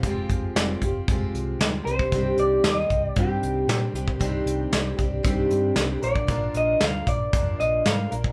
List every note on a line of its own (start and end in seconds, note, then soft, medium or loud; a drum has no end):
0.03 0.23 F1 medium
0.03 0.56 F3 medium
0.03 0.55 G#3 medium
0.03 0.57 C4 medium
0.03 0.57 F4 loud
0.03 0.58 G4 medium
0.03 kick medium
0.03 closed hi-hat medium
0.29 0.49 F1 medium
0.29 kick medium
0.29 closed hi-hat medium
0.55 0.75 F1 medium
0.55 0.82 G#3 medium
0.55 0.83 C4 medium
0.55 0.83 F4 medium
0.55 0.83 G4 medium
0.55 snare loud
0.55 closed hi-hat medium
0.81 1.01 F1 medium
0.81 1.09 F4 soft
0.81 1.09 G4 medium
0.81 kick medium
0.81 closed hi-hat medium
0.86 1.08 C4 soft
1.08 1.28 F1 medium
1.08 1.61 F3 medium
1.08 1.59 G#3 medium
1.08 1.61 C4 medium
1.08 1.61 F4 medium
1.08 1.63 G4 medium
1.08 kick loud
1.08 closed hi-hat medium
1.34 1.54 C2 medium
1.34 closed hi-hat medium
1.59 1.79 D2 medium
1.59 1.87 G#3 medium
1.59 1.87 C4 medium
1.59 1.88 F4 medium
1.59 snare loud
1.59 closed hi-hat medium
1.63 1.86 G4 medium
1.85 2.06 C2 medium
1.85 2.13 C4 soft
1.85 2.13 D4 soft
1.85 2.13 G4 medium
1.85 2.39 C5 medium
1.85 closed hi-hat medium
1.90 2.13 G3 soft
1.99 kick medium
2.12 2.32 C2 medium
2.12 2.65 C3 medium
2.12 2.65 D#3 medium
2.12 2.63 G3 medium
2.12 2.63 C4 medium
2.12 2.68 D4 medium
2.12 2.65 G4 medium
2.12 kick medium
2.12 closed hi-hat medium
2.38 2.58 C2 medium
2.38 2.66 D5 medium
2.38 closed hi-hat medium
2.64 2.84 D#2 medium
2.64 3.16 G3 medium
2.64 3.16 C4 medium
2.64 3.17 G4 medium
2.64 snare loud
2.64 closed hi-hat medium
2.68 3.06 D#5 medium
2.90 3.10 C2 medium
2.90 kick medium
2.90 closed hi-hat medium
3.06 3.20 D5 medium
3.16 3.36 G2 medium
3.16 3.69 C3 medium
3.16 3.69 D#3 medium
3.16 3.67 G3 medium
3.16 3.67 C4 medium
3.16 3.69 D4 medium
3.16 3.69 G4 medium
3.16 3.92 G4 medium
3.16 kick loud
3.16 closed hi-hat medium
3.43 3.63 C2 medium
3.43 closed hi-hat medium
3.67 3.88 A#2 medium
3.67 3.95 G3 medium
3.67 3.95 C4 medium
3.67 3.95 D4 medium
3.67 3.94 G4 medium
3.67 snare loud
3.67 closed hi-hat medium
3.93 4.14 C2 medium
3.93 4.19 G3 soft
3.93 4.19 C4 soft
3.93 4.20 D4 medium
3.93 4.19 G4 medium
3.93 closed hi-hat medium
4.08 kick medium
4.19 4.40 C2 medium
4.19 4.72 C3 medium
4.19 4.73 D#3 medium
4.19 4.71 G3 medium
4.19 4.71 C4 medium
4.19 4.73 D4 loud
4.19 4.73 G4 loud
4.19 kick medium
4.19 closed hi-hat medium
4.45 4.65 C2 medium
4.45 closed hi-hat medium
4.72 4.92 C2 medium
4.72 4.98 G3 medium
4.72 4.97 C4 medium
4.72 4.96 D4 medium
4.72 4.96 G4 medium
4.72 snare loud
4.72 closed hi-hat medium
4.97 5.18 C2 medium
4.97 5.23 G3 soft
4.97 5.23 C4 soft
4.97 5.23 D4 soft
4.97 5.23 G4 medium
4.97 kick medium
4.97 closed hi-hat medium
5.23 5.45 C2 medium
5.23 5.76 C3 medium
5.23 5.76 D#3 medium
5.23 5.75 G3 medium
5.23 5.76 C4 medium
5.23 5.77 D4 medium
5.23 5.77 G4 medium
5.23 kick loud
5.23 closed hi-hat medium
5.50 5.70 G2 medium
5.50 closed hi-hat medium
5.76 5.96 C2 medium
5.76 6.03 G3 medium
5.76 6.02 C4 medium
5.76 6.01 D4 medium
5.76 6.01 G4 medium
5.76 snare loud
5.76 closed hi-hat medium
6.02 6.22 A#1 medium
6.02 6.28 F3 soft
6.02 6.27 A#3 soft
6.02 6.28 D4 soft
6.02 6.28 A#4 medium
6.02 6.57 D5 medium
6.02 closed hi-hat medium
6.16 kick medium
6.27 6.48 A#1 medium
6.27 6.80 A#2 medium
6.27 6.81 D3 medium
6.27 6.81 F3 medium
6.27 6.82 A#3 medium
6.27 6.81 D4 medium
6.27 6.83 A#4 medium
6.27 kick loud
6.27 closed hi-hat medium
6.54 6.74 A#1 medium
6.54 6.83 D#5 medium
6.54 closed hi-hat medium
6.81 7.01 D2 medium
6.81 7.33 F3 medium
6.81 7.33 A#3 medium
6.81 7.33 D4 medium
6.81 7.34 A#4 medium
6.81 7.08 F5 medium
6.81 snare loud
6.81 closed hi-hat medium
7.06 7.26 A#1 medium
7.06 7.60 D5 medium
7.06 kick medium
7.06 closed hi-hat medium
7.33 7.53 F2 medium
7.33 7.85 A#2 medium
7.33 7.85 D3 medium
7.33 7.85 F3 medium
7.33 7.85 A#3 medium
7.33 7.86 D4 medium
7.33 7.87 A#4 medium
7.33 kick loud
7.33 closed hi-hat medium
7.60 7.79 A#1 medium
7.60 7.86 D#5 medium
7.60 closed hi-hat medium
7.85 8.05 G#2 medium
7.85 8.11 F3 medium
7.85 8.11 A#3 medium
7.85 8.10 D4 medium
7.85 8.10 A#4 medium
7.85 8.10 F5 medium
7.85 snare loud
7.85 closed hi-hat medium
8.11 8.31 A#1 medium
8.11 8.32 F3 soft
8.11 8.32 A#3 soft
8.11 8.32 D4 soft
8.11 8.32 A#4 soft
8.11 closed hi-hat medium
8.24 kick medium